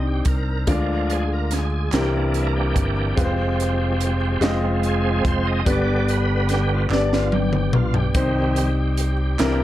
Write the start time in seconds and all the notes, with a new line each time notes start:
Already playing: C2 C3 G3 C4 D4 D#4 C5
0.07 G4
0.25 C2 A#4, kick, closed hi-hat
0.67 D2 D3 F3 G#3 D4 F4 D5, kick, closed hi-hat
1.10 G#4, closed hi-hat
1.33 A#4
1.51 G#4, snare, closed hi-hat
1.92 C2 C3 E3 G3 A#3 C4 D4 E4 G4 A#4, snare, clap, closed hi-hat
2.34 E4, closed hi-hat
2.47 A#4
2.56 G4
2.76 G1, kick, closed hi-hat
3.15 F1 F3 G#3 C4 F4 B4, kick, closed hi-hat
3.24 C5
3.60 closed hi-hat
4.01 closed hi-hat
4.41 F1 G#3 C4 F4 D#5, snare, clap, closed hi-hat
4.83 G#4, closed hi-hat
5.25 F1 C5, kick, closed hi-hat
5.47 D#5
5.65 G1 G2 D3 G3 B3 D4 B4, kick, closed hi-hat
5.69 D5
6.08 B4, closed hi-hat
6.49 G4, snare, closed hi-hat
6.74 F4
6.90 G1 G3 B3 D4 D5, snare, clap
7.13 F4, snare
7.32 G4, high tom
7.53 G4, mid tom
7.73 B1 F4, mid tom
7.94 G4, floor tom
8.15 C2 C3 D#3 G3 C4 D#4 C5, kick, closed hi-hat
8.56 closed hi-hat
8.97 closed hi-hat
9.39 C2 C3 E3 G3 A#3 C4 D4 E4 A#4, snare, clap, closed hi-hat